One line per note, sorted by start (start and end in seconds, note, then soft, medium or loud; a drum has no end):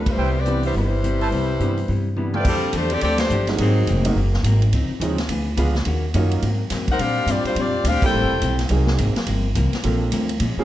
0.00 0.14 D2 medium
0.06 0.37 G3 medium
0.06 0.37 E4 medium
0.06 0.37 C5 medium
0.06 kick medium
0.06 ride medium
0.10 0.37 B3 medium
0.17 0.71 C2 medium
0.17 0.37 C3 soft
0.17 0.37 G3 soft
0.17 0.37 B3 soft
0.17 0.29 E4 medium
0.17 0.37 E4 medium
0.17 0.29 B4 medium
0.17 0.29 C5 medium
0.17 0.29 G5 medium
0.38 0.65 C4 medium
0.38 0.65 G4 medium
0.38 0.65 B4 medium
0.38 0.65 D5 loud
0.46 0.65 C3 medium
0.46 0.89 E3 medium
0.46 0.65 G3 medium
0.46 0.89 G3 medium
0.46 0.89 B3 soft
0.46 0.65 B3 medium
0.46 0.89 D4 medium
0.46 0.66 E4 medium
0.46 closed hi-hat soft
0.63 0.75 G3 medium
0.63 0.74 B3 medium
0.63 0.75 E4 medium
0.63 0.75 C5 medium
0.63 open hi-hat soft
0.74 1.29 G1 medium
0.74 0.94 C3 soft
0.74 0.94 G3 soft
0.74 2.14 G3 medium
0.74 0.94 B3 soft
0.74 2.14 E4 medium
0.74 0.95 E4 soft
0.74 2.14 B4 medium
0.74 2.14 C5 medium
0.74 open hi-hat soft
1.03 1.22 C3 medium
1.03 1.22 G3 soft
1.03 1.22 B3 medium
1.03 1.22 E4 medium
1.03 closed hi-hat soft
1.21 1.28 E4 medium
1.21 1.28 B4 medium
1.21 1.28 C5 medium
1.21 1.28 A5 medium
1.21 open hi-hat soft
1.31 1.58 C2 medium
1.31 1.50 C3 soft
1.31 1.51 G3 soft
1.31 1.51 B3 medium
1.31 1.51 E4 soft
1.31 open hi-hat soft
1.60 1.86 G2 medium
1.60 1.79 C3 medium
1.60 1.76 E3 medium
1.60 1.79 G3 medium
1.60 1.76 G3 soft
1.60 1.76 B3 soft
1.60 1.79 B3 medium
1.60 1.77 D4 medium
1.60 1.79 E4 medium
1.60 closed hi-hat soft
1.77 open hi-hat soft
1.88 2.42 G2 medium
1.88 2.07 C3 soft
1.88 2.07 G3 soft
1.88 2.07 B3 soft
1.88 2.08 E4 soft
1.88 open hi-hat soft
2.16 2.35 C3 medium
2.16 2.33 E3 soft
2.16 2.36 G3 medium
2.16 2.33 G3 soft
2.16 2.33 B3 soft
2.16 2.36 B3 medium
2.16 2.33 D4 soft
2.16 2.36 E4 medium
2.16 mid tom soft
2.34 2.46 G3 medium
2.34 2.71 F4 medium
2.34 2.71 A4 medium
2.34 2.71 D5 medium
2.34 2.71 G5 medium
2.34 mid tom medium
2.38 2.46 C4 medium
2.38 2.46 E4 medium
2.38 2.46 B4 medium
2.45 2.73 F2 medium
2.45 2.64 F3 soft
2.45 2.73 G3 medium
2.45 2.64 A3 soft
2.45 2.73 C4 medium
2.45 2.65 D4 soft
2.45 2.73 D4 medium
2.45 2.65 G4 medium
2.45 2.73 A4 medium
2.45 kick medium
2.45 crash medium
2.73 3.01 E2 medium
2.73 2.93 F3 medium
2.73 2.93 A3 medium
2.73 2.93 D4 medium
2.73 2.94 G4 medium
2.73 2.92 C5 medium
2.73 hi-hat pedal medium
2.73 ride medium
2.77 2.93 A3 medium
2.77 2.91 G4 medium
2.90 3.02 C4 medium
2.90 3.01 G4 medium
2.90 3.02 A4 medium
2.90 3.02 D5 medium
2.90 ride medium
3.01 3.29 D2 medium
3.01 3.21 F3 soft
3.01 3.22 A3 soft
3.01 3.19 C4 medium
3.01 3.22 D4 medium
3.01 3.19 G4 medium
3.01 3.19 A4 medium
3.01 3.19 D5 loud
3.01 ride medium
3.05 3.22 G4 soft
3.18 3.46 A3 medium
3.18 3.46 D4 medium
3.18 3.46 G4 medium
3.18 3.46 C5 medium
3.18 snare medium
3.18 ride medium
3.29 3.58 G1 medium
3.29 3.50 F3 medium
3.29 3.50 A3 medium
3.29 3.50 D4 medium
3.29 hi-hat pedal medium
3.33 3.50 G4 medium
3.47 3.85 F#3 medium
3.47 3.85 G#3 medium
3.47 3.85 A#3 medium
3.47 3.86 C4 medium
3.47 3.85 D#4 medium
3.47 snare soft
3.47 ride medium
3.58 3.86 G#1 medium
3.58 3.78 G#2 soft
3.58 4.12 F#3 medium
3.58 3.78 F#3 medium
3.58 3.79 A#3 soft
3.58 4.12 C4 medium
3.58 3.79 C4 medium
3.58 4.12 D#4 medium
3.58 4.12 G#4 medium
3.58 ride medium
3.87 4.15 F1 medium
3.87 4.06 G#2 medium
3.87 4.07 F#3 medium
3.87 4.07 A#3 medium
3.87 4.07 C4 medium
3.87 hi-hat pedal medium
3.87 ride medium
4.05 4.15 F#3 medium
4.05 4.15 G#3 medium
4.05 4.15 A#3 medium
4.05 4.15 C4 medium
4.05 4.15 D#4 medium
4.05 ride medium
4.15 4.43 F#1 medium
4.15 4.35 G#2 soft
4.15 4.35 F#3 medium
4.15 4.35 A#3 medium
4.15 4.36 C4 medium
4.34 snare soft
4.43 4.71 G#1 loud
4.43 4.63 G#2 medium
4.43 4.64 F#3 medium
4.43 4.64 A#3 medium
4.43 4.64 C4 medium
4.43 hi-hat pedal soft
4.43 ride medium
4.62 ride soft
4.72 4.89 C#2 medium
4.72 4.91 C#3 medium
4.72 4.92 F3 medium
4.72 4.92 C4 medium
4.72 4.92 D#4 medium
4.72 ride medium
4.89 muted upright bass stroke soft
5.00 5.28 D#2 medium
5.00 5.19 C#3 medium
5.00 5.19 F3 medium
5.00 5.17 F3 medium
5.00 5.17 G#3 medium
5.00 5.20 C4 medium
5.00 5.17 C4 medium
5.00 5.17 C#4 medium
5.00 5.20 D#4 medium
5.00 5.17 D#4 medium
5.00 hi-hat pedal medium
5.00 ride medium
5.18 snare medium
5.18 ride medium
5.28 5.56 D2 medium
5.28 5.48 D3 soft
5.28 5.48 B3 medium
5.28 5.49 F4 medium
5.28 5.49 G#4 medium
5.28 ride medium
5.57 5.85 C#2 medium
5.57 5.76 D3 medium
5.57 5.74 F3 medium
5.57 5.74 G#3 medium
5.57 5.76 B3 medium
5.57 5.74 B3 medium
5.57 5.74 D4 medium
5.57 5.77 F4 medium
5.57 5.74 F4 medium
5.57 5.77 G#4 medium
5.57 hi-hat pedal medium
5.57 ride medium
5.75 snare medium
5.85 6.13 D#2 medium
5.85 6.04 D#3 medium
5.85 6.05 A#3 medium
5.85 6.05 C#4 medium
5.85 6.05 F#4 medium
5.85 ride medium
6.14 6.42 F#2 medium
6.14 6.33 D#3 medium
6.14 6.43 F#3 medium
6.14 6.33 A#3 medium
6.14 6.43 A#3 medium
6.14 6.33 C#4 medium
6.14 6.43 C#4 medium
6.14 6.43 D#4 medium
6.14 6.43 F4 medium
6.14 6.33 F#4 medium
6.14 hi-hat pedal soft
6.14 ride medium
6.31 ride medium
6.42 6.70 G#2 medium
6.42 6.61 G#2 soft
6.42 6.62 F#3 medium
6.42 6.62 A#3 medium
6.42 6.62 C4 medium
6.42 ride medium
6.70 6.87 F#2 medium
6.70 6.90 G#2 medium
6.70 6.90 F#3 medium
6.70 6.90 A#3 medium
6.70 6.90 C4 medium
6.70 snare soft
6.70 hi-hat pedal medium
6.70 ride medium
6.87 7.00 D#4 medium
6.87 7.00 A#4 medium
6.87 6.99 C5 medium
6.87 7.00 F#5 medium
6.87 muted upright bass stroke soft
6.87 kick medium
6.87 ride soft
6.98 7.25 A#2 medium
6.98 7.18 A#2 medium
6.98 7.18 G3 medium
6.98 7.19 C4 medium
6.98 7.19 D4 medium
6.98 7.29 D4 medium
6.98 7.28 G4 medium
6.98 7.29 C5 medium
6.98 7.28 F5 loud
6.98 ride medium
7.26 7.43 G2 medium
7.26 7.46 A#2 medium
7.26 7.47 G3 medium
7.26 7.47 C4 medium
7.26 7.46 C4 medium
7.26 7.47 D4 medium
7.26 hi-hat pedal medium
7.26 ride medium
7.30 7.45 F4 medium
7.30 7.47 G4 medium
7.30 7.47 D5 medium
7.44 7.56 G3 medium
7.44 7.56 D4 medium
7.44 7.56 F4 medium
7.44 7.56 C5 medium
7.44 muted upright bass stroke soft
7.44 ride soft
7.55 7.83 F2 medium
7.55 7.75 A#2 soft
7.55 7.75 G3 soft
7.55 7.76 C4 soft
7.55 7.76 D4 soft
7.55 ride medium
7.59 7.86 C4 medium
7.59 7.86 F4 medium
7.59 7.86 G4 medium
7.59 7.86 D5 medium
7.84 8.01 D2 medium
7.84 8.04 A#2 medium
7.84 8.04 G3 medium
7.84 8.04 C4 medium
7.84 8.04 D4 medium
7.84 8.03 G4 medium
7.84 8.04 C5 medium
7.84 hi-hat pedal medium
7.84 ride medium
7.88 8.04 F5 loud
8.02 8.40 G3 medium
8.02 8.40 A#3 medium
8.02 8.40 C4 medium
8.02 8.40 E4 medium
8.02 8.57 E4 medium
8.02 8.40 A4 medium
8.02 8.57 A4 medium
8.02 8.57 C5 medium
8.02 muted upright bass stroke soft
8.02 kick medium
8.02 crash medium
8.06 8.57 G5 loud
8.13 8.24 A1 medium
8.13 8.32 A2 soft
8.13 8.32 G3 soft
8.13 8.32 C4 medium
8.13 8.33 E4 medium
8.23 8.31 G1 medium
8.32 8.41 E1 medium
8.41 8.69 B1 medium
8.41 8.60 A2 medium
8.41 8.60 G3 medium
8.41 8.61 C4 medium
8.41 8.60 E4 medium
8.41 hi-hat pedal medium
8.41 ride medium
8.59 snare soft
8.59 ride medium
8.69 8.97 C2 medium
8.69 8.88 G#2 soft
8.69 8.89 F#3 soft
8.69 9.13 F#3 medium
8.69 8.89 A#3 medium
8.69 9.13 A#3 soft
8.69 9.13 C4 soft
8.69 8.89 C4 medium
8.69 9.13 D#4 medium
8.69 9.13 G#4 medium
8.69 ride medium
8.87 snare medium
8.97 9.14 G#1 medium
8.97 9.17 G#2 medium
8.97 9.17 F#3 medium
8.97 9.18 A#3 medium
8.97 9.18 C4 medium
8.97 hi-hat pedal medium
8.97 ride medium
9.15 muted upright bass stroke soft
9.15 snare medium
9.15 ride medium
9.26 9.54 G1 medium
9.26 9.45 G2 medium
9.26 9.46 F3 medium
9.26 9.46 A#3 medium
9.26 9.46 C4 medium
9.26 ride medium
9.55 9.71 C2 loud
9.55 9.74 G2 medium
9.55 9.74 F3 medium
9.55 9.74 A#3 medium
9.55 9.74 C4 medium
9.55 hi-hat pedal medium
9.55 ride medium
9.73 muted upright bass stroke soft
9.73 snare soft
9.73 ride soft
9.83 10.11 A#1 medium
9.83 10.02 G2 medium
9.83 10.26 F3 medium
9.83 10.02 F3 medium
9.83 10.26 A#3 soft
9.83 10.03 A#3 medium
9.83 10.26 C4 soft
9.83 10.03 C4 medium
9.83 10.26 D4 soft
9.83 10.26 A4 medium
9.83 ride medium
10.12 10.39 D2 medium
10.12 10.30 G2 medium
10.12 10.30 F3 medium
10.12 10.31 A#3 medium
10.12 10.31 C4 medium
10.12 hi-hat pedal medium
10.12 ride medium
10.29 ride medium
10.40 10.56 A#2 medium
10.40 10.59 A#2 medium
10.40 10.59 F3 medium
10.40 10.59 G#3 medium
10.40 10.59 C#4 medium
10.40 ride medium
10.57 10.64 F3 medium
10.57 10.64 A#3 medium
10.57 10.64 C4 medium
10.57 10.64 C#4 medium
10.57 10.64 G#4 medium
10.57 muted upright bass stroke soft